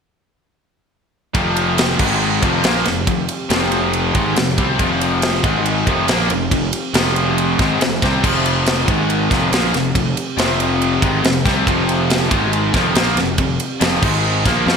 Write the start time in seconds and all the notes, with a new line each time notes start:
1.35 F1 F2 C3 F3 C4 G4, kick, ride
1.57 ride
1.78 snare, ride
1.99 G#1 G#2 D#3 G#3, kick, crash
2.42 F1 F2 C3 F3 C4 G4, kick, ride
2.63 A#1 A#2 F3 A#3, snare, ride
2.85 F1 F2 C3, snare, ride
3.07 F1 F2 C3, kick, ride
3.29 ride
3.50 F1 F2 C3 F3, snare, ride
3.72 ride
3.93 ride
4.14 G#1 G#2 D#3 G#3, kick, ride
4.36 F1 F2 C3, snare, ride
4.57 C2 C3 G3 C4, kick, ride
4.78 F1 F2 C3 F3, kick, ride
5.01 ride
5.22 snare, ride
5.44 G#1 G#2 D#3 G#3, kick, ride
5.66 ride
5.86 F1 F2 C3 F3 C4 G4, kick, ride
6.08 A#1 A#2 F3 A#3, snare, ride
6.30 F1 F2 C3, ride
6.51 F1 F2 C3, kick, ride
6.73 ride
6.94 F1 F2 C3 F3, snare, ride
7.16 ride
7.38 ride
7.59 G#1 G#2 D#3 G#3, kick, snare, ride
7.80 F1 F2 C3, snare, ride
8.02 C2 C3 G3 C4, kick, snare, ride
8.23 F1 F2 C3 F3, kick, crash
8.46 ride
8.66 snare, ride
8.88 G#1 G#2 D#3 G#3, kick, ride
9.10 ride
9.31 F1 F2 C3 F3 C4 G4, kick, snare, ride
9.52 A#1 A#2 F3 A#3, snare, ride
9.73 F1 F2 C3, snare, ride
9.95 F1 F2 C3, kick, ride
10.17 ride
10.37 F1 F2 C3 F3, snare, ride
10.60 ride
10.82 ride
11.01 G#1 G#2 D#3 G#3, kick, ride
11.23 F1 F2 C3, snare, ride
11.45 C2 C3 G3 C4, kick, snare, ride
11.66 F1 F2 C3 F3, kick, ride
11.89 ride
12.10 snare, ride
12.31 G#1 G#2 D#3 G#3, kick, ride
12.53 ride
12.73 F1 F2 C3 F3 C4 G4, kick, snare, ride
12.94 A#1 A#2 F3 A#3, snare, ride
13.16 F1 F2 C3, snare, ride
13.38 F1 F2 C3, kick, ride
13.60 ride
13.80 F1 F2 C3 F3, snare, ride
14.02 G#1 G#2 D#3 G#3, kick, crash
14.45 A#1 A#2 F3 A#3 C4 G4, kick, snare, ride
14.66 F2 F3 C4 F4, snare